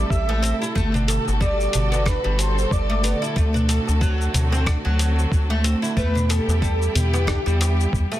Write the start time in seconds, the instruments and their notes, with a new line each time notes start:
Already playing: string section C3 G3 A3 E4 A4, oud G3
0.10 analog synth bass A1, soft synth lead E5, kick, shaker
0.29 oud A3, darbuka ka, darbuka tek
0.43 oud C4, closed hi-hat, shaker
0.62 oud E4, shaker
0.75 analog synth bass G1, string section B2 D3 F#4, oud A3, kick, shaker
0.94 oud D4, darbuka dum, shaker
1.08 oud A4, closed hi-hat, darbuka tek, shaker
1.28 analog synth bass G1, darbuka ka, shaker
1.41 oud G3, soft synth lead D5, kick, shaker
1.60 shaker
1.73 analog synth bass G1, closed hi-hat, darbuka dum, shaker
1.92 oud B3, darbuka tek, shaker
2.06 oud D4, soft synth lead B4, kick, cross-stick, shaker
2.24 analog synth bass G1, oud G3, darbuka ka
2.39 soft synth lead C5, closed hi-hat, darbuka ka, darbuka tek, shaker
2.58 shaker
2.71 analog synth bass G1, soft synth lead D5, kick, shaker
2.90 oud A3, darbuka tek
3.03 oud B3, closed hi-hat, shaker
3.22 oud E4, darbuka tek, shaker
3.36 analog synth bass D2, oud A3, string section A3 C4 F#4, kick, shaker
3.54 oud D4, darbuka dum, shaker
3.69 oud A4, closed hi-hat, darbuka tek, shaker
3.87 analog synth bass D2, darbuka ka, shaker
4.01 oud F#3, kick, shaker
4.21 shaker
4.34 analog synth bass D2, closed hi-hat, darbuka dum, shaker
4.52 oud C4, darbuka tek, shaker
4.66 oud D4, kick, cross-stick, shaker
4.85 analog synth bass D2, oud F#3, darbuka tek
4.99 closed hi-hat, darbuka ka, shaker
5.19 shaker
5.32 analog synth bass D2, kick, shaker
5.50 oud A3, darbuka ka, darbuka tek
5.64 oud C4, closed hi-hat, shaker
5.82 oud E4, shaker
5.96 analog synth bass E2, string section G3 B3 E4 G4, oud A3, soft synth lead B4, kick, shaker
6.15 oud D4, darbuka dum, shaker
6.29 oud A4, soft synth lead A4, closed hi-hat, darbuka tek, shaker
6.48 analog synth bass E2, darbuka ka, shaker
6.62 oud G3, kick, shaker
6.82 shaker
6.94 analog synth bass E2, soft synth lead G4, closed hi-hat, darbuka dum, shaker
7.13 oud B3, darbuka tek, shaker
7.27 oud D4, kick, cross-stick, shaker
7.46 analog synth bass E2, oud G3, darbuka ka, shaker
7.60 closed hi-hat, darbuka ka, darbuka tek, shaker
7.80 shaker
7.93 analog synth bass E2, kick, shaker
8.12 oud A3, darbuka tek, shaker